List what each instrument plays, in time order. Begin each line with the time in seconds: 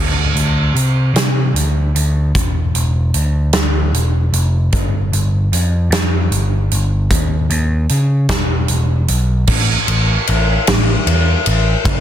Already playing: picked electric bass D2
0.35 picked electric bass D2, closed hi-hat
0.74 picked electric bass C3, closed hi-hat
1.14 picked electric bass C3, snare, closed hi-hat
1.54 picked electric bass D2, closed hi-hat
1.95 picked electric bass D2, closed hi-hat
2.35 picked electric bass E1, kick, closed hi-hat
2.74 picked electric bass E1, closed hi-hat
3.14 picked electric bass D2, closed hi-hat
3.53 picked electric bass D2, snare, closed hi-hat
3.93 picked electric bass E1, closed hi-hat
4.32 picked electric bass F1, closed hi-hat
4.72 picked electric bass G1, kick, closed hi-hat
5.12 picked electric bass G1, closed hi-hat
5.52 picked electric bass F2, closed hi-hat
5.90 picked electric bass F2, snare, closed hi-hat
6.31 picked electric bass G1, closed hi-hat
6.72 picked electric bass G1, closed hi-hat
7.10 picked electric bass D#2, kick, closed hi-hat
7.50 picked electric bass D#2, closed hi-hat
7.89 picked electric bass C#3, closed hi-hat
8.29 picked electric bass E1, kick, snare, closed hi-hat
8.68 picked electric bass E1, closed hi-hat
9.08 picked electric bass B1, closed hi-hat
9.47 picked electric bass A1, kick, crash
9.88 picked electric bass A1, ride
10.27 picked electric bass A1, ride
10.67 picked electric bass A1, snare, ride
11.07 picked electric bass E2, ride
11.46 picked electric bass A1, ride
11.84 picked electric bass F#1, kick, ride